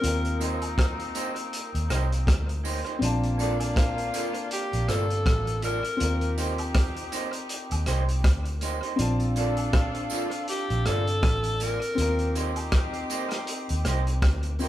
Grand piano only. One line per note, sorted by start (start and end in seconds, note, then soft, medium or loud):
0.01 2.97 C4 medium
0.01 2.98 F4 medium
0.05 2.99 G4 medium
0.05 3.00 A#4 medium
2.99 5.95 C4 medium
2.99 5.96 D4 medium
2.99 5.97 F4 medium
3.04 5.97 A5 loud
5.97 8.93 C4 medium
5.97 8.94 F4 medium
6.01 8.95 G4 medium
6.01 8.96 A#4 medium
8.96 11.92 C4 medium
8.96 11.93 D4 medium
8.96 11.94 F4 medium
9.02 11.95 A5 medium
11.95 14.54 C4 medium
11.95 14.55 F4 medium
11.95 14.56 G4 medium
12.01 14.57 A#4 medium
14.59 14.68 C4 medium
14.59 14.68 F4 medium
14.59 14.68 G4 medium
14.59 14.68 A#4 medium